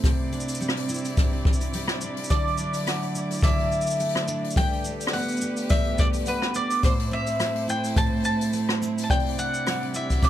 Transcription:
Already playing: A3 C4 E4
0.04 C3 C4 E4 C5 D5, kick, open hi-hat, cabasa
0.32 D4, open hi-hat, cabasa
0.40 cabasa
0.48 open hi-hat, cabasa
0.55 cabasa
0.60 G3, cabasa
0.69 cross-stick
0.76 open hi-hat
0.89 E4, cabasa
0.94 cabasa
0.98 cabasa
1.05 open hi-hat, cabasa
1.17 C3, kick, open hi-hat, cabasa
1.33 open hi-hat
1.45 kick
1.53 cabasa
1.61 open hi-hat, cabasa
1.73 G3, open hi-hat, cabasa
1.88 cross-stick
2.01 D4, cabasa
2.17 open hi-hat
2.24 cabasa
2.30 D3 F#3 A4 D5, kick, open hi-hat
2.47 open hi-hat
2.58 D4, cabasa
2.74 open hi-hat, cabasa
2.87 A3 F#5, cross-stick, open hi-hat, cabasa
3.02 open hi-hat
3.15 E4, cabasa
3.30 open hi-hat, cabasa
3.34 cabasa
3.38 cabasa
3.40 cabasa
3.42 D3 E5 D6, kick, open hi-hat, cabasa
3.59 open hi-hat
3.72 cabasa
3.81 cabasa
3.87 open hi-hat, cabasa
3.90 open hi-hat, cabasa
3.95 open hi-hat
3.99 A3, open hi-hat, cabasa
4.05 open hi-hat
4.09 open hi-hat
4.15 cross-stick
4.28 D4, cabasa
4.44 open hi-hat
4.51 cabasa
4.56 G3 A3 G4 A4 B4 G5, kick, open hi-hat
4.73 open hi-hat
4.85 D4, cabasa
5.00 open hi-hat, cabasa
5.07 cross-stick
5.13 B3 F#5, open hi-hat, cabasa
5.18 cabasa
5.22 cabasa
5.29 open hi-hat, cabasa
5.32 cabasa
5.37 cabasa
5.41 G4, cabasa
5.57 open hi-hat, cabasa
5.69 G3 D5 E5, kick, open hi-hat, cabasa
5.84 open hi-hat
5.98 D5, kick, cabasa
6.13 open hi-hat, cabasa
6.26 B3 B4 F#5, open hi-hat, cabasa
6.42 cross-stick
6.54 D4 D5, cabasa
6.70 open hi-hat, cabasa
6.83 A2 A3 E4 C5 D6, kick, open hi-hat, cabasa
6.99 open hi-hat
7.11 C4 E5
7.27 open hi-hat, cabasa
7.40 A3, cross-stick, open hi-hat, cabasa
7.55 open hi-hat
7.68 E4 G5, cabasa
7.84 open hi-hat, cabasa
7.96 A2 A5, kick, open hi-hat, cabasa
8.13 open hi-hat
8.15 open hi-hat
8.20 open hi-hat
8.21 open hi-hat
8.23 A5, open hi-hat, cabasa
8.41 open hi-hat, cabasa
8.53 A3, open hi-hat, cabasa
8.69 cross-stick
8.82 C4, cabasa
8.98 open hi-hat, cabasa
9.04 A5
9.10 C3 C4 C5 D5 G5, kick, cabasa
9.19 open hi-hat
9.26 open hi-hat
9.28 open hi-hat
9.38 D4 F#5, cabasa
9.54 cabasa
9.67 G3 F#5, cross-stick, open hi-hat, cabasa
9.82 open hi-hat
9.94 E4 E5, cabasa
10.10 kick, open hi-hat, cabasa
10.23 C3 D5 D6, kick, open hi-hat, cabasa

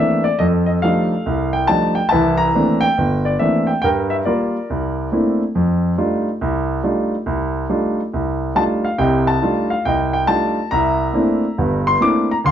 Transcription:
Already playing: E3 A3 A#3 C4 D4 E5
0.24 D5
0.39 F2 A4 D#5
0.66 D#5
0.82 F3 G3 A3 D4 D#4 A4 F5
1.26 C2
1.53 G5
1.67 F3 G3 A3 D4 D#4 A5
1.95 G5
2.09 C2 E3 E5 A5
2.37 A#5
2.55 E3 A3 A#3 C4 D4
2.81 G5
2.98 G1
3.25 D5
3.39 E3 A3 A#3 C4 D4 E5
3.67 G5
3.82 G2 A#4 G5
4.10 E5
4.25 G3 A#3 F4 A#4 D5
4.70 C2
5.12 A3 A#3 C4 D4 E4
5.55 F2
5.98 G3 A3 D4 D#4 F4
6.41 C2
6.84 G3 A3 D4 D#4 F4
7.26 C2
7.70 G3 A3 D4 D#4 F4
8.14 C2
8.55 G3 A3 D4 D#4 F4 A5
8.85 F5
8.98 C2 C3 D#5 G5
9.27 A5
9.42 G3 A3 D4 D#4 F4
9.70 F5
9.85 C2 D#5 G5
10.13 G5
10.27 G3 A3 D4 D#4 F4 A5
10.71 C2 E5 A#5
11.13 A3 A#3 C4 D4 E4
11.58 G1 G2
11.87 C6
12.01 A3 A#3 C4 D4 E4 D6
12.31 A#5
12.44 D2 F5 C6

